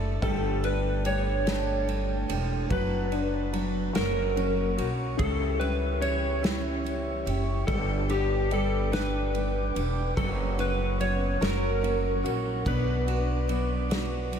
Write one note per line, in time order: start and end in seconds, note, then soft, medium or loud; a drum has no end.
0.00 0.20 F#1 medium
0.00 0.18 D3 medium
0.00 0.22 A3 soft
0.00 0.24 A3 medium
0.00 0.19 D4 medium
0.00 0.22 D4 medium
0.00 0.19 E4 medium
0.00 0.22 A4 medium
0.00 2.66 A4 medium
0.00 0.20 D5 medium
0.00 0.19 E5 medium
0.00 3.91 A5 medium
0.22 2.26 G1 loud
0.22 2.67 G3 medium
0.22 0.64 G3 medium
0.22 0.64 A3 medium
0.22 3.92 D4 medium
0.22 0.63 D4 medium
0.22 0.62 G4 medium
0.22 0.66 A4 medium
0.22 2.69 G5 medium
0.22 kick loud
0.22 ride medium
0.63 1.04 A3 medium
0.63 1.46 D4 soft
0.63 1.05 D4 medium
0.63 1.05 G4 medium
0.63 1.03 B4 medium
0.63 ride soft
1.05 1.46 G3 medium
1.05 1.46 A3 medium
1.05 1.45 D4 medium
1.05 2.67 G4 medium
1.05 1.44 G4 medium
1.05 2.67 C#5 medium
1.05 ride medium
1.45 1.86 G3 medium
1.45 1.86 A3 medium
1.45 1.87 D4 medium
1.45 2.67 D4 medium
1.45 1.87 G4 medium
1.45 snare medium
1.45 ride medium
1.87 2.29 G3 medium
1.87 2.29 A3 medium
1.87 2.28 D4 medium
1.87 2.27 G4 medium
1.87 ride soft
2.28 2.69 E1 medium
2.28 2.69 A3 soft
2.28 2.69 D4 medium
2.28 2.70 G4 medium
2.28 ride medium
2.69 3.91 F#1 medium
2.69 3.12 F#3 medium
2.69 3.52 F#3 medium
2.69 3.12 B3 medium
2.69 3.11 D4 medium
2.69 3.10 F#4 medium
2.69 3.93 B4 medium
2.69 3.95 B4 medium
2.69 5.16 F#5 medium
2.69 kick loud
2.69 ride medium
3.11 3.53 B3 soft
3.11 3.93 D4 soft
3.11 3.53 D4 soft
3.11 3.53 F#4 medium
3.11 ride soft
3.53 3.92 F#3 medium
3.53 3.94 F#3 medium
3.53 3.95 B3 medium
3.53 3.95 D4 medium
3.53 3.94 F#4 medium
3.53 ride medium
3.93 4.74 F#1 medium
3.93 4.37 F#2 soft
3.93 4.37 C#3 medium
3.93 5.15 F#3 medium
3.93 4.34 F#3 medium
3.93 4.35 A#3 medium
3.93 4.36 C#4 medium
3.93 4.36 F#4 medium
3.93 4.85 A#4 medium
3.93 5.18 A#4 medium
3.93 7.65 C#5 medium
3.93 7.64 C#6 medium
3.93 snare loud
3.93 ride medium
4.35 4.77 F#3 medium
4.35 4.78 A#3 medium
4.35 5.17 C#4 soft
4.35 4.77 C#4 medium
4.35 4.76 F#4 medium
4.35 ride soft
4.77 5.17 B1 medium
4.77 5.18 F#3 soft
4.77 5.19 A#3 soft
4.77 5.18 C#4 soft
4.77 5.18 F#4 medium
4.77 5.19 F#4 soft
4.77 ride medium
5.17 7.23 C#2 loud
5.17 7.63 C#3 medium
5.17 5.60 C#3 medium
5.17 5.61 E3 medium
5.17 5.60 C#4 medium
5.17 5.59 E4 medium
5.17 7.65 G4 medium
5.17 5.58 G4 medium
5.17 5.62 A4 medium
5.17 7.65 E5 medium
5.17 kick loud
5.17 ride medium
5.59 7.22 G3 soft
5.59 6.00 C#4 soft
5.59 6.01 E4 medium
5.59 6.02 G4 medium
5.59 6.01 B4 medium
5.59 ride soft
6.00 6.42 E3 medium
6.00 7.63 C#4 medium
6.00 6.42 C#4 medium
6.00 6.42 E4 medium
6.00 6.41 G4 medium
6.00 7.73 C#5 medium
6.00 ride medium
6.42 6.85 C#3 soft
6.42 6.82 E3 soft
6.42 6.83 C#4 medium
6.42 7.63 E4 medium
6.42 6.84 E4 medium
6.42 6.84 G4 medium
6.42 snare loud
6.42 ride medium
6.83 7.26 E3 medium
6.83 7.26 C#4 medium
6.83 7.26 E4 medium
6.83 7.24 G4 medium
6.83 ride soft
7.25 7.65 F#1 medium
7.25 7.68 C#4 soft
7.25 7.68 E4 medium
7.25 7.67 G4 medium
7.25 ride medium
7.67 9.71 G1 loud
7.67 8.09 G2 medium
7.67 8.09 D3 medium
7.67 8.50 G3 medium
7.67 8.09 G3 medium
7.67 8.09 B3 medium
7.67 8.08 D4 medium
7.67 8.07 G4 medium
7.67 8.10 A4 medium
7.67 11.37 B4 medium
7.67 10.14 D5 medium
7.67 10.14 G5 medium
7.67 10.14 D6 medium
7.67 kick loud
7.67 ride medium
8.08 8.49 G3 soft
8.08 8.50 B3 soft
8.08 8.90 D4 soft
8.08 8.51 D4 medium
8.08 8.50 G4 medium
8.08 8.53 G4 medium
8.08 ride soft
8.50 8.91 G3 medium
8.50 10.13 G3 medium
8.50 8.91 B3 medium
8.50 8.91 D4 medium
8.50 8.90 G4 medium
8.50 8.95 A4 medium
8.50 ride medium
8.91 9.34 G2 medium
8.91 9.34 D3 medium
8.91 9.31 G3 medium
8.91 9.32 B3 medium
8.91 10.13 D4 medium
8.91 9.33 D4 medium
8.91 9.33 G4 medium
8.91 9.82 B4 medium
8.91 snare loud
8.91 ride medium
9.32 9.75 G3 medium
9.32 9.75 B3 medium
9.32 9.74 D4 medium
9.32 9.73 G4 medium
9.32 ride soft
9.74 10.15 E1 medium
9.74 10.17 G3 soft
9.74 10.16 B3 soft
9.74 10.17 D4 soft
9.74 10.16 G4 medium
9.74 ride medium
10.16 11.37 F#1 loud
10.16 10.58 F#2 medium
10.16 10.58 C#3 medium
10.16 11.38 F#3 medium
10.16 10.59 F#3 medium
10.16 10.58 B3 medium
10.16 10.57 C#4 medium
10.16 10.56 F#4 medium
10.16 10.28 A4 medium
10.16 12.64 C#5 medium
10.16 14.39 F#5 medium
10.16 12.64 C#6 medium
10.16 kick loud
10.16 ride medium
10.57 10.98 F#3 soft
10.57 10.98 B3 medium
10.57 11.38 C#4 medium
10.57 10.99 C#4 medium
10.57 10.99 F#4 medium
10.57 10.98 B4 medium
10.57 ride medium
10.99 11.40 F#3 medium
10.99 11.41 B3 medium
10.99 11.40 C#4 medium
10.99 11.40 F#4 medium
10.99 11.39 F#4 medium
10.99 11.43 C#5 medium
10.99 ride medium
11.40 12.21 F#1 medium
11.40 11.83 F#2 medium
11.40 11.83 C#3 medium
11.40 12.62 F#3 medium
11.40 11.80 F#3 medium
11.40 11.81 A#3 medium
11.40 11.82 C#4 medium
11.40 11.82 F#4 medium
11.40 12.65 A#4 medium
11.40 12.67 A#4 medium
11.40 snare loud
11.40 ride medium
11.81 12.23 F#3 medium
11.81 12.23 A#3 medium
11.81 12.63 C#4 medium
11.81 12.22 C#4 medium
11.81 12.21 F#4 medium
11.81 ride soft
12.22 12.64 A#1 medium
12.22 12.64 F#3 soft
12.22 12.65 A#3 medium
12.22 12.65 C#4 medium
12.22 12.65 F#4 medium
12.22 12.64 F#4 medium
12.22 ride medium
12.65 14.39 B1 loud
12.65 13.07 B2 medium
12.65 13.07 F#3 medium
12.65 13.07 B3 medium
12.65 13.48 B3 medium
12.65 13.06 D4 medium
12.65 13.05 F#4 medium
12.65 14.39 B4 medium
12.65 14.39 D5 medium
12.65 14.39 D6 medium
12.65 kick loud
12.65 ride medium
13.06 13.47 B3 soft
13.06 13.48 D4 medium
13.06 13.48 F#4 medium
13.06 13.90 F#4 medium
13.06 ride soft
13.47 13.90 F#3 medium
13.47 13.89 B3 medium
13.47 14.39 B3 medium
13.47 13.89 D4 medium
13.47 13.88 F#4 medium
13.47 ride medium
13.89 14.32 B2 medium
13.89 14.29 F#3 medium
13.89 14.30 B3 medium
13.89 14.31 D4 medium
13.89 14.31 F#4 medium
13.89 14.39 F#4 medium
13.89 snare loud
13.89 ride medium
14.30 14.39 F#3 medium
14.30 14.39 B3 medium
14.30 14.39 D4 medium
14.30 14.39 F#4 medium
14.30 ride soft